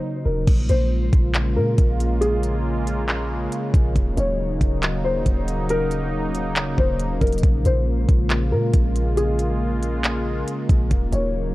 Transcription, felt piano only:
0, 0, Header, 1, 2, 480
1, 0, Start_track
1, 0, Key_signature, -5, "minor"
1, 0, Tempo, 434783
1, 527, Time_signature, 4, 2, 24, 8
1, 12748, End_track
2, 0, Start_track
2, 0, Title_t, "Felt piano"
2, 0, Program_c, 0, 0
2, 0, Note_on_c, 0, 72, 79
2, 261, Note_off_c, 0, 72, 0
2, 281, Note_on_c, 0, 70, 70
2, 511, Note_off_c, 0, 70, 0
2, 768, Note_on_c, 0, 72, 81
2, 1683, Note_off_c, 0, 72, 0
2, 1724, Note_on_c, 0, 70, 80
2, 2402, Note_off_c, 0, 70, 0
2, 2440, Note_on_c, 0, 68, 105
2, 4319, Note_off_c, 0, 68, 0
2, 4605, Note_on_c, 0, 73, 75
2, 5522, Note_off_c, 0, 73, 0
2, 5564, Note_on_c, 0, 72, 84
2, 6242, Note_off_c, 0, 72, 0
2, 6294, Note_on_c, 0, 70, 108
2, 7446, Note_off_c, 0, 70, 0
2, 7492, Note_on_c, 0, 72, 82
2, 7941, Note_off_c, 0, 72, 0
2, 7963, Note_on_c, 0, 70, 74
2, 8192, Note_off_c, 0, 70, 0
2, 8453, Note_on_c, 0, 72, 84
2, 9365, Note_off_c, 0, 72, 0
2, 9407, Note_on_c, 0, 70, 81
2, 10083, Note_off_c, 0, 70, 0
2, 10124, Note_on_c, 0, 68, 101
2, 12001, Note_off_c, 0, 68, 0
2, 12284, Note_on_c, 0, 73, 76
2, 12748, Note_off_c, 0, 73, 0
2, 12748, End_track
0, 0, End_of_file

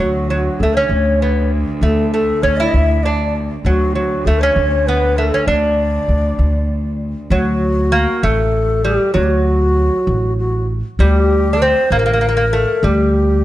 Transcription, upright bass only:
0, 0, Header, 1, 2, 480
1, 0, Start_track
1, 0, Tempo, 611621
1, 1427, Time_signature, 6, 3, 24, 8
1, 10551, End_track
2, 0, Start_track
2, 0, Title_t, "Upright bass"
2, 0, Program_c, 0, 32
2, 0, Note_on_c, 0, 38, 83
2, 369, Note_off_c, 0, 38, 0
2, 471, Note_on_c, 0, 38, 73
2, 661, Note_off_c, 0, 38, 0
2, 701, Note_on_c, 0, 38, 80
2, 1277, Note_off_c, 0, 38, 0
2, 1423, Note_on_c, 0, 38, 78
2, 1807, Note_off_c, 0, 38, 0
2, 1907, Note_on_c, 0, 38, 76
2, 2098, Note_off_c, 0, 38, 0
2, 2148, Note_on_c, 0, 38, 82
2, 2721, Note_off_c, 0, 38, 0
2, 2861, Note_on_c, 0, 38, 81
2, 3245, Note_off_c, 0, 38, 0
2, 3343, Note_on_c, 0, 38, 75
2, 3535, Note_off_c, 0, 38, 0
2, 3579, Note_on_c, 0, 38, 83
2, 4155, Note_off_c, 0, 38, 0
2, 4295, Note_on_c, 0, 38, 81
2, 4681, Note_off_c, 0, 38, 0
2, 4774, Note_on_c, 0, 38, 66
2, 4969, Note_off_c, 0, 38, 0
2, 5013, Note_on_c, 0, 38, 80
2, 5590, Note_off_c, 0, 38, 0
2, 5732, Note_on_c, 0, 38, 97
2, 6310, Note_off_c, 0, 38, 0
2, 6460, Note_on_c, 0, 33, 91
2, 7035, Note_off_c, 0, 33, 0
2, 7181, Note_on_c, 0, 38, 91
2, 7755, Note_off_c, 0, 38, 0
2, 7904, Note_on_c, 0, 33, 88
2, 8477, Note_off_c, 0, 33, 0
2, 8624, Note_on_c, 0, 38, 101
2, 9198, Note_off_c, 0, 38, 0
2, 9343, Note_on_c, 0, 33, 88
2, 9917, Note_off_c, 0, 33, 0
2, 10067, Note_on_c, 0, 38, 100
2, 10551, Note_off_c, 0, 38, 0
2, 10551, End_track
0, 0, End_of_file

